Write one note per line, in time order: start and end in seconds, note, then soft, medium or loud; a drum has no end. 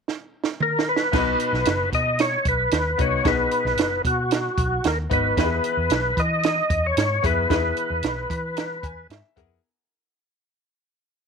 0.08 snare medium
0.44 snare medium
0.60 0.89 A#4 medium
0.60 mid tom medium
0.79 snare medium
0.89 1.90 B4 loud
0.96 snare medium
1.12 1.35 B1 loud
1.12 1.89 B2 medium
1.12 1.94 B3 medium
1.12 1.95 D#4 medium
1.12 1.95 F#4 medium
1.12 1.95 B4 medium
1.12 kick loud
1.12 snare medium
1.12 crash medium
1.39 closed hi-hat medium
1.53 1.64 B1 medium
1.53 snare soft
1.65 1.88 F#1 medium
1.65 snare loud
1.65 closed hi-hat medium
1.93 2.36 B2 medium
1.93 2.21 D#5 medium
1.93 kick medium
1.93 closed hi-hat medium
2.19 2.47 C#5 loud
2.19 snare loud
2.19 closed hi-hat medium
2.45 2.67 B1 medium
2.45 3.02 B4 medium
2.45 kick medium
2.45 closed hi-hat medium
2.71 2.94 D#2 medium
2.71 snare medium
2.71 closed hi-hat medium
2.98 3.20 C2 medium
2.98 3.19 B3 medium
2.98 3.19 D#4 medium
2.98 3.19 F#4 medium
2.98 3.20 B4 medium
2.98 3.27 C#5 medium
2.98 kick loud
2.98 closed hi-hat medium
3.24 3.47 B1 loud
3.24 4.00 B2 medium
3.24 4.06 B3 medium
3.24 4.07 D#4 medium
3.24 4.07 F#4 medium
3.24 4.07 G#4 medium
3.24 4.02 B4 medium
3.24 kick loud
3.24 snare loud
3.24 closed hi-hat medium
3.51 closed hi-hat medium
3.65 3.78 B1 medium
3.65 snare soft
3.77 4.00 F#1 medium
3.77 snare loud
3.77 closed hi-hat medium
4.05 4.48 B2 medium
4.05 4.88 F#4 medium
4.05 kick medium
4.05 closed hi-hat medium
4.31 snare loud
4.31 closed hi-hat medium
4.58 4.79 B1 medium
4.58 kick loud
4.58 closed hi-hat medium
4.84 5.06 D#2 medium
4.84 4.98 A#4 medium
4.84 snare loud
4.84 closed hi-hat medium
5.10 5.32 G#1 medium
5.10 5.31 B3 medium
5.10 5.31 D#4 medium
5.10 5.31 F#4 medium
5.10 5.32 B4 medium
5.10 6.21 B4 medium
5.10 kick loud
5.10 closed hi-hat medium
5.37 5.59 E2 loud
5.37 6.13 E3 medium
5.37 6.19 B3 medium
5.37 6.19 E4 medium
5.37 5.44 G4 soft
5.37 6.20 B4 medium
5.37 kick loud
5.37 snare loud
5.37 closed hi-hat medium
5.45 6.23 G#4 medium
5.64 closed hi-hat medium
5.77 5.88 E2 medium
5.90 6.12 B1 medium
5.90 snare loud
5.90 closed hi-hat medium
6.17 6.60 E3 medium
6.17 6.87 D#5 loud
6.17 kick medium
6.17 closed hi-hat medium
6.43 snare loud
6.43 closed hi-hat medium
6.70 6.92 E2 medium
6.70 kick loud
6.70 closed hi-hat medium
6.86 7.26 C#5 medium
6.97 7.18 G#2 medium
6.97 snare loud
6.97 closed hi-hat medium
7.22 7.45 F2 medium
7.22 7.43 B3 medium
7.22 7.44 E4 medium
7.22 7.44 G#4 medium
7.22 7.44 B4 medium
7.22 9.07 B4 medium
7.22 kick loud
7.22 closed hi-hat medium
7.49 7.72 E2 loud
7.49 8.26 E3 medium
7.49 8.32 B3 medium
7.49 8.32 E4 medium
7.49 8.32 G#4 medium
7.49 8.33 B4 medium
7.49 kick loud
7.49 snare loud
7.49 closed hi-hat medium
7.77 closed hi-hat medium
7.90 8.01 E2 medium
8.03 8.25 B1 medium
8.03 snare loud
8.03 closed hi-hat medium
8.30 8.85 E3 medium
8.30 8.55 B5 medium
8.30 kick medium
8.30 closed hi-hat medium
8.57 8.82 A#5 medium
8.57 snare loud
8.57 closed hi-hat medium
8.83 9.05 E2 medium
8.83 9.08 G#5 medium
8.83 kick loud
8.83 closed hi-hat medium
9.10 9.21 G#2 medium
9.10 9.35 E5 medium
9.10 snare medium
9.10 closed hi-hat medium
9.36 9.58 F2 medium
9.36 9.57 B3 medium
9.36 9.57 E4 medium
9.36 9.58 G#4 medium
9.36 9.58 A#4 medium
9.36 9.61 F#5 medium
9.36 kick loud
9.36 closed hi-hat medium